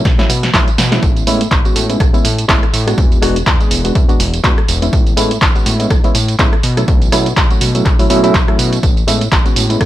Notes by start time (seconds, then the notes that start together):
0.05 B1, kick, snare, closed hi-hat, tambourine
0.18 B2 F#3 A3 C#4 E4, snare, closed hi-hat, tambourine
0.29 B2, open hi-hat, tambourine
0.43 snare, closed hi-hat, tambourine
0.54 B1 F#3 A3 C#4 E4, kick, snare, clap, closed hi-hat, tambourine
0.68 closed hi-hat, tambourine
0.78 B2, snare, open hi-hat, tambourine
0.92 G#3 B3 C#4 E4, snare, closed hi-hat, tambourine
1.03 A1, kick, closed hi-hat, tambourine
1.17 closed hi-hat, tambourine
1.27 A2 G#3 B3 C#4 E4, open hi-hat, tambourine
1.41 closed hi-hat, tambourine
1.51 A1, kick, clap, closed hi-hat, tambourine
1.65 G#3 B3 C#4 F#4, closed hi-hat, tambourine
1.76 A2, open hi-hat, tambourine
1.89 G#3 B3 C#4 E4, closed hi-hat, tambourine
2.00 A1, kick, cross-stick, closed hi-hat, tambourine
2.13 A2 G#3 B3 C#4 E4, closed hi-hat, tambourine
2.25 A2, open hi-hat, tambourine
2.38 closed hi-hat, tambourine
2.48 A1 G#3 B3 C#4 E4, kick, clap, closed hi-hat, tambourine
2.63 cross-stick, closed hi-hat
2.73 A2, open hi-hat, tambourine
2.87 G#3 B3 D4 F#4, cross-stick, closed hi-hat, tambourine
2.98 E2, kick, closed hi-hat, tambourine
3.12 closed hi-hat, tambourine
3.22 E1 G#3 B3 D4 F#4, cross-stick, open hi-hat, tambourine
3.36 closed hi-hat, tambourine
3.47 E2, kick, clap, closed hi-hat, tambourine
3.60 G#3 B3 D4 G#4, closed hi-hat, tambourine
3.71 E1, open hi-hat, tambourine
3.84 G#3 B3 D4 F#4, closed hi-hat, tambourine
3.95 E2, kick, closed hi-hat, tambourine
4.08 E1 G#3 B3 D4 F#4, closed hi-hat, tambourine
4.20 E1, open hi-hat, tambourine
4.34 closed hi-hat, tambourine
4.44 E2 G#3 B3 D4 F#4, kick, clap, closed hi-hat, tambourine
4.58 cross-stick, closed hi-hat
4.68 E1, open hi-hat, tambourine
4.82 G#3 B3 C#4 E4, closed hi-hat, tambourine
4.93 A1, kick, closed hi-hat, tambourine
5.07 closed hi-hat, tambourine
5.17 A2 G#3 B3 C#4 E4, open hi-hat, tambourine
5.31 closed hi-hat, tambourine
5.42 A1, kick, clap, closed hi-hat, tambourine
5.55 G#3 B3 C#4 F#4, closed hi-hat, tambourine
5.66 A2, open hi-hat, tambourine
5.79 G#3 B3 C#4 E4, closed hi-hat, tambourine
5.90 A1, kick, cross-stick, closed hi-hat, tambourine
6.04 A2 G#3 B3 C#4 E4, closed hi-hat, tambourine
6.15 A2, open hi-hat, tambourine
6.28 closed hi-hat, tambourine
6.39 A1 G#3 B3 C#4 E4, kick, clap, closed hi-hat, tambourine
6.53 cross-stick, closed hi-hat
6.63 B2, open hi-hat, tambourine
6.77 F#3 A3 C#4 E4, cross-stick, closed hi-hat, tambourine
6.88 B1, kick, closed hi-hat, tambourine
7.02 closed hi-hat, tambourine
7.12 B2 F#3 A3 C#4 E4, cross-stick, open hi-hat, tambourine
7.26 closed hi-hat, tambourine
7.37 B1, kick, clap, closed hi-hat, tambourine
7.50 F#3 A3 C#4 F#4, closed hi-hat, tambourine
7.61 B2, open hi-hat, tambourine
7.74 F#3 A3 C#4 E4, closed hi-hat, tambourine
7.86 B1, kick, clap, closed hi-hat, tambourine
7.99 B2 F#3 A3 C#4 E4, open hi-hat, tambourine
8.10 B2 F#3 A3 C#4 E4, open hi-hat, tambourine
8.23 F#3 A3 C#4 E4, closed hi-hat, tambourine
8.34 B1, kick, clap, closed hi-hat, tambourine
8.48 F#3 A3 C#4 E4, cross-stick, closed hi-hat
8.59 B2, open hi-hat, tambourine
8.73 closed hi-hat, tambourine
8.83 A1, kick, closed hi-hat, tambourine
8.97 closed hi-hat, tambourine
9.07 A2 G#3 B3 C#4 E4, open hi-hat, tambourine
9.21 closed hi-hat, tambourine
9.32 A1, kick, clap, closed hi-hat, tambourine
9.45 G#3 B3 C#4 F#4, closed hi-hat, tambourine
9.56 A2, open hi-hat, tambourine
9.69 G#3 B3 C#4 E4, closed hi-hat, tambourine
9.81 A1, kick, cross-stick, closed hi-hat, tambourine